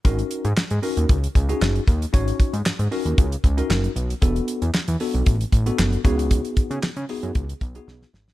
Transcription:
<<
  \new Staff \with { instrumentName = "Tine electric piano" } { \time 4/4 \key cis \mixolydian \tempo 4 = 115 <cis' dis' fis' ais'>8. r8. <cis' dis' fis' ais'>8. r8 <cis' dis' fis' gis'>8. r8 | <cis' dis' fis' cis''>8. r8. <cis' dis' fis' ais'>8. r8 <cis' dis' fis' ais'>8. r8 | <b d' fis' a'>8. r8. <b d' fis' a'>8. r8 <b d' fis' a'>8. <b dis' fis' gis'>8~ | <b dis' fis' gis'>4 r8 <b dis' fis' gis'>8. r8 <b dis' fis' gis'>8. r8 | }
  \new Staff \with { instrumentName = "Analog synth bass" } { \clef bass \time 4/4 \key cis \mixolydian gis,,8 r16 gis,16 gis,16 gis,16 r16 dis,16 cis,8 cis,8 fis,,8 dis,8 | gis,,8 r16 gis,16 gis,16 gis,16 r16 dis,16 cis,8 cis,8 fis,,8 b,,8 | e,,8 r16 e,16 r16 e,16 r16 b,,16 a,,8 a,,8 fis,,8 cis,8~ | cis,8 r16 cis16 cis16 cis16 r16 fis,16 cis,8 b,,8 b,,8 gis,,8 | }
  \new DrumStaff \with { instrumentName = "Drums" } \drummode { \time 4/4 <hh bd>16 hh16 hh16 hh16 <hc sn>16 hh16 hho16 hh16 <hh bd>16 hh16 <hh bd>16 hh16 <hc sn>16 hh16 <hh bd>16 hh16 | <hh bd>16 hh16 <hh bd>16 hh16 <hc sn>16 hh16 hho16 hh16 <hh bd>16 hh16 <hh bd>16 hh16 <hc sn>16 hh16 hh16 hh16 | <hh bd>16 hh16 hh16 hh16 <hc sn>16 hh16 hho16 hh16 <hh bd>16 hh16 <hh bd>16 hh16 <hc sn>16 hh16 <hh bd>16 hh16 | <hh bd>16 hh16 <hh bd>16 hh16 <hc sn>16 hh16 hho16 hh16 <hh bd>16 hh16 <hh bd>16 hh16 sn16 sn16 sn16 sn16 | }
>>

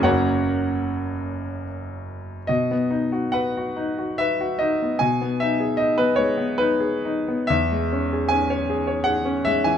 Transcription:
\new Staff \with { instrumentName = "Grand piano" } { \time 3/4 \key b \major \tempo 4 = 74 << { <fis' cis'' fis''>2 r4 | dis''4 fis''4 e''8 dis''8 | gis''8 e''8 dis''16 b'16 cis''8 b'4 | e''4 gis''4 fis''8 e''16 gis''16 | } \\ { <fis,, fis, ais cis'>2. | b,16 b16 dis'16 fis'16 b'16 fis'16 dis'16 fis'16 b'16 fis'16 dis'16 b16 | b,16 b16 dis'16 gis'16 dis'16 b16 gis16 b16 dis'16 gis'16 dis'16 b16 | e,16 gis16 cis'16 gis'16 cis'16 cis''16 gis'16 cis''16 gis'16 cis'16 gis16 e16 | } >> }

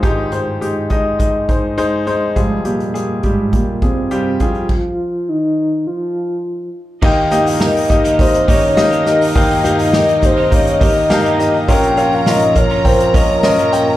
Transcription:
<<
  \new Staff \with { instrumentName = "Soft synth lead" } { \time 4/4 \key ees \mixolydian \tempo 4 = 103 r1 | aes8 bes4 aes8 bes8 c'8 c'8 f'8~ | f'4 ees'4 f'4. r8 | g''8. f''16 ees''4 c''8 des''4 r8 |
g''8. f''16 ees''8 c''8 des''8 ees''8 bes''8. r16 | g''8. f''16 ees''8 des''8 c''8 des''4 r8 | }
  \new Staff \with { instrumentName = "Violin section" } { \time 4/4 \key ees \mixolydian r1 | r1 | r1 | <ees' ees''>1~ |
<ees' ees''>1 | <bes' bes''>1 | }
  \new Staff \with { instrumentName = "Grand piano" } { \time 4/4 \key ees \mixolydian <aes ees' g'>8 <aes ees' c''>8 <aes ees' g'>8 <aes ees' ees''>8 <aes ees' ees''>8 <aes ees' c''>8 <aes ees' c''>8 <aes ees' c''>8 | <g f' aes'>8 <g f' g'>8 <g f' aes'>8 <g f' g'>8 <g f' g'>8 <g f' aes'>8 <g f' g'>8 <g f' aes'>8 | r1 | <bes ees' g' ees''>8 <bes ees' g' ees''>8 <bes ees' g' bes'>8 <bes ees' g' ees''>8 <bes ees' g' ees''>8 <bes ees' g' ees''>8 <bes ees' g' ees''>8 <bes ees' g' bes'>8 |
<bes ees' g' f''>8 <bes ees' g' f''>8 <bes ees' g' bes'>8 <bes ees' g' f''>8 <bes ees' g' bes'>8 <bes ees' g' bes'>8 <bes ees' g' f''>8 <bes ees' g' ees''>8 | <des' f' bes' f''>8 <des' f' bes' f''>8 <des' f' bes' f''>8 <des' f' bes' f''>8 <des' f' bes' g''>8 <des' f' bes' ees''>8 <des' f' bes' ees''>8 <des' f' bes' g''>8 | }
  \new Staff \with { instrumentName = "Grand piano" } { \clef bass \time 4/4 \key ees \mixolydian <aes,, aes,>1 | <f,, f,>1 | r1 | <ees, ees>1 |
<ees, ees>1 | <bes,, bes,>1 | }
  \new Staff \with { instrumentName = "Clean electric guitar" } { \time 4/4 \key ees \mixolydian r1 | r1 | r1 | <ees bes ees' g'>4 <ees bes ees' g'>8. <ees bes ees' g'>8. <ees bes ees' g'>8. <ees bes ees' g'>8. |
<ees bes ees' g'>4 <ees bes ees' g'>8. <ees bes ees' g'>8. <ees bes ees' g'>8. <ees bes ees' g'>8. | <f bes des' f'>4 <bes, f bes des' f'>8. <bes, f bes des' f'>8. <bes, f bes des' f'>8. <bes, f bes des' f'>8. | }
  \new DrumStaff \with { instrumentName = "Drums" } \drummode { \time 4/4 <hh bd>8 hh8 hh8 <hh bd>8 <hh bd>8 <hh bd>8 hh8 hh8 | <hh bd>8 hh16 hh16 hh8 <hh bd>8 <hh bd>8 <hh bd>8 hh8 <hh bd>16 hh16 | <cymc bd>4 r4 r4 r4 | <cymc bd>16 hho16 <hho hhp>16 <hho hhp>16 <hho hhp sn>16 <hho hhp>16 <hho hhp bd>16 <hho hhp>16 <hho hhp bd>16 hhp16 <hho hhp bd>16 hho16 <hho hhp sn>16 <hho hhp>16 <hho hhp sn>16 <hho hhp>16 |
<hho hhp bd>16 <hho hhp>16 <hho hhp>16 <hho hhp>16 <hho hhp sn>16 hhp16 <hho hhp bd>16 hho16 <hho hhp bd>16 hhp16 <hho hhp bd>16 hho16 <hho hhp sn>16 hhp16 <hho hhp sn>16 hho16 | <hho hhp bd>16 hhp16 <hho hhp>16 hho16 <hho hhp sn>16 hhp16 <hho hhp bd>16 hho16 <hho hhp bd>16 hhp16 <hho hhp bd>16 hho16 <hho hhp sn>16 hhp16 <hho hhp sn>16 hho16 | }
>>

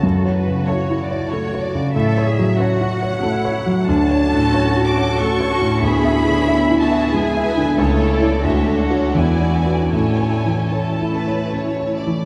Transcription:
<<
  \new Staff \with { instrumentName = "Violin section" } { \time 3/4 \key a \major \tempo 4 = 92 a'8 b'8 cis''8 d''8 cis''8 d''8 | e''4 fis''2 | a''4. d'''8 cis'''4 | b''4. a''8 gis''4 |
cis''8 d''8 e''8 fis''8 gis''4 | gis''4 a''4. r8 | }
  \new Staff \with { instrumentName = "Violin section" } { \time 3/4 \key a \major r4 <a' a''>4 <a' a''>4 | r4 <a' a''>4 <a' a''>4 | r8 <a' a''>4 <a' a''>4 <a' a''>8 | <gis' e''>8 <gis' e''>4 <gis' e''>4 <gis' e''>8 |
<a' cis''>4 <a' cis''>4 <fis' d''>4 | <a' cis''>4 a'8 b'8 cis''8 d''8 | }
  \new Staff \with { instrumentName = "Cello section" } { \time 3/4 \key a \major fis'2. | a'8 gis'8 fis'4 e'4 | d'4 fis'4 a'8 fis'8 | gis'4 e'8 fis'8 gis'8 b'8 |
a'4 fis'4 e'4 | cis'2~ cis'8 r8 | }
  \new Staff \with { instrumentName = "Grand piano" } { \time 3/4 \key a \major \tuplet 3/2 { fis,8 cis''8 cis8 cis''8 e'8 cis''8 a8 cis''8 cis8 } | \tuplet 3/2 { a,8 cis''8 fis8 cis''8 fis'8 cis''8 a8 cis''8 fis8 } | \tuplet 3/2 { d,8 cis''8 a,8 cis''8 fis'8 cis''8 a8 cis''8 a,8 } | \tuplet 3/2 { d,8 e''8 d8 e''8 e'8 e''8 gis8 e''8 d8 } |
\tuplet 3/2 { cis,8 a8 <e' cis''>8 d,8 a8 <fis' cis''>8 e,8 d'8 <fis' b'>8 } | \tuplet 3/2 { a,8 cis''8 e8 cis''8 e'8 cis''8 cis'8 cis''8 e8 } | }
  \new Staff \with { instrumentName = "Viola section" } { \time 3/4 \key a \major r4 <cis' e'>4 <cis' e'>4 | r4 <cis' fis'>4 <cis' fis'>4 | r8 <cis' fis'>4 <cis' fis'>4 <cis' fis'>8 | <b e'>8 <b e'>4 <b e'>4 <b e'>8 |
<a e'>4 <a d'>4 <b e'>4 | <a e'>4 <a e'>4. r8 | }
>>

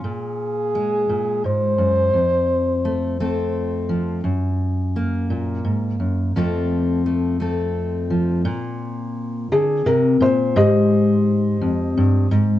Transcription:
<<
  \new Staff \with { instrumentName = "Felt piano" } { \time 6/8 \key f \phrygian \tempo 4. = 57 r2. | r2. | r2. | r2. |
\key bes \mixolydian r4. aes'8 bes'8 c''8 | <g' c'' ees''>2~ <g' c'' ees''>8 r8 | }
  \new Staff \with { instrumentName = "French horn" } { \time 6/8 \key f \phrygian aes'2 c''4~ | c''2~ c''8 r8 | r2. | r2. |
\key bes \mixolydian r2. | r2. | }
  \new Staff \with { instrumentName = "Steel-string acoustic guitar" } { \clef bass \time 6/8 \key f \phrygian << { f'4 aes2 | r4 a8 <a c' a'>4. | r4 bes2 | <f a c' a'>4 a8 <a c' a'>4.~ |
\key bes \mixolydian <a c' a'>2. | r2. | } \\ { bes,4. bes,8 aes,8 ges,8 | f,2~ f,8 f8 | ges,4. bes,8 aes,8 ges,8 | f,2~ f,8 f8 |
bes,4. d8 c8 bes,8 | aes,4. f,8 g,8 aes,8 | } >> }
>>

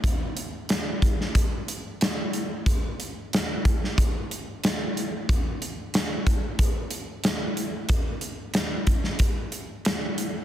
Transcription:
\new DrumStaff \with { instrumentName = "Drums" } \drummode { \time 4/4 \tempo 4 = 92 <hh bd>8 hh8 <hh sn>8 <hh bd>16 sn16 <hh bd>8 hh8 <hh sn>8 hh8 | <hh bd>8 hh8 <hh sn>8 <hh bd>16 sn16 <hh bd>8 hh8 <hh sn>8 hh8 | <hh bd>8 hh8 <hh sn>8 <hh bd>8 <hh bd>8 hh8 <hh sn>8 hh8 | <hh bd>8 hh8 <hh sn>8 <hh bd>16 sn16 <hh bd>8 hh8 <hh sn>8 hh8 | }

